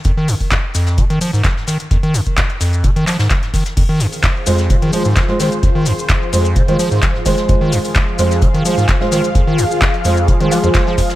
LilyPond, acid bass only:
\new Staff \with { instrumentName = "Acid bass" } { \clef bass \time 4/4 \key f \minor \tempo 4 = 129 f,16 ees16 f,16 r16 f,16 r16 f,8 c16 ees16 f16 aes,16 f,16 r16 ees16 r16 | f,16 ees16 f,16 r16 f,16 r16 f,8 c16 ees16 f16 aes,16 f,16 r16 ees16 r16 | f,16 ees16 f,16 r16 f,16 r16 f,8 c16 ees16 f16 aes,16 f,16 r16 ees16 r16 | f,16 ees16 f,16 r16 f,16 r16 f,8 c16 ees16 f16 aes,16 r8 ees16 r16 |
f,16 ees16 f,16 r16 f,16 r16 f,8 c16 ees16 f16 aes,16 r8 ees16 r16 | f,16 ees16 f,16 r16 f,16 r16 f,8 c16 ees16 f16 f,16 f,16 f16 f,16 r16 | }